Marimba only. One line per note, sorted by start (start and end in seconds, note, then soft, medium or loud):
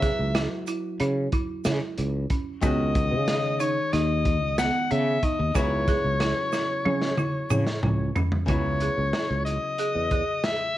0.02 0.20 G#4 medium
0.35 0.52 E4 medium
0.68 0.85 E4 medium
1.00 1.18 C#4 medium
1.33 1.50 E4 medium
1.65 2.00 E4 medium
2.30 2.48 C#4 medium
2.63 2.98 B3 medium
3.60 3.78 D#4 medium
3.93 4.28 D#4 medium
4.58 4.76 B3 medium
4.91 5.08 B3 medium
5.23 5.41 D#4 medium
5.55 5.73 E4 medium
5.89 6.06 G#4 medium
6.21 6.38 E4 medium
6.53 6.70 E4 medium
6.86 7.03 C#4 medium
7.18 7.36 E4 medium
7.50 7.85 E4 medium
8.15 8.33 C#4 medium
8.49 8.66 E4 medium
8.82 8.99 G#4 medium
9.14 9.49 E4 medium
9.79 9.97 G#4 medium
10.12 10.47 G#4 medium